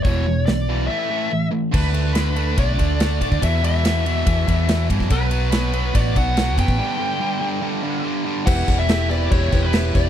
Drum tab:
CC |----------------|x---------------|----------------|----------------|
RD |----------------|--x-x-x-x-x-x-x-|x-x-x-x-x-x-x-x-|x-x-x-x-x-x-x-x-|
HH |o---o-----------|----------------|----------------|----------------|
SD |----o-----------|----o-------o---|----o-------o--o|----o-------oo--|
BD |o---------------|o-------o-o---oo|o-------o-o---oo|o-------o-o---oo|

CC |----------------|x-x-x-x-x-x-x-x-|
RD |----------------|----------------|
HH |----------------|----------------|
SD |----------------|----o-------o---|
BD |----------------|o-o-----o-o---o-|